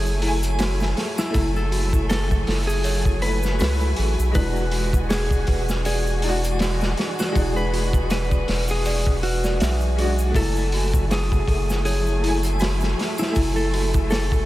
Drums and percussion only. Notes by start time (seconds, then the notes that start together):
0.06 shaker
0.22 open hi-hat
0.43 closed hi-hat, triangle, shaker
0.59 snare, open hi-hat, shaker
0.80 snare, shaker
0.97 snare, open hi-hat
1.18 snare, triangle, shaker
1.34 kick, open hi-hat, shaker
1.56 shaker
1.72 open hi-hat
1.93 kick, shaker
2.10 snare, open hi-hat, shaker
2.31 kick, shaker
2.47 snare, open hi-hat
2.69 shaker
2.84 open hi-hat, shaker
3.05 kick, shaker
3.22 open hi-hat
3.43 snare, shaker
3.59 snare, open hi-hat, shaker
3.81 shaker
3.96 open hi-hat
4.19 shaker
4.35 kick, open hi-hat, shaker
4.56 shaker
4.71 open hi-hat
4.93 kick, shaker
5.10 snare, open hi-hat, shaker
5.31 kick, shaker
5.47 kick, open hi-hat
5.69 snare, shaker
5.85 open hi-hat, shaker
6.07 shaker
6.22 open hi-hat
6.44 closed hi-hat, triangle, shaker
6.59 snare, open hi-hat, shaker
6.81 snare, shaker
6.97 snare, open hi-hat
7.19 snare, triangle, shaker
7.35 kick, open hi-hat, shaker
7.56 shaker
7.74 open hi-hat
7.93 kick, shaker
8.10 snare, open hi-hat, shaker
8.31 kick, shaker
8.48 snare, open hi-hat
8.68 shaker
8.85 open hi-hat, shaker
9.06 kick, shaker
9.23 open hi-hat
9.44 snare, shaker
9.60 snare, open hi-hat, shaker
9.80 shaker
9.98 open hi-hat
10.19 shaker
10.35 kick, open hi-hat, shaker
10.56 shaker
10.72 open hi-hat
10.93 kick, shaker
11.11 snare, open hi-hat, shaker
11.32 kick, shaker
11.48 kick, open hi-hat
11.70 snare, shaker
11.85 open hi-hat, shaker
12.06 shaker
12.24 open hi-hat
12.43 closed hi-hat, triangle, shaker
12.59 snare, open hi-hat, shaker
12.80 snare, shaker
12.99 snare, open hi-hat
13.18 snare, triangle, shaker
13.35 kick, open hi-hat, shaker
13.56 shaker
13.74 open hi-hat
13.94 kick, shaker
14.10 snare, open hi-hat, shaker
14.32 kick, shaker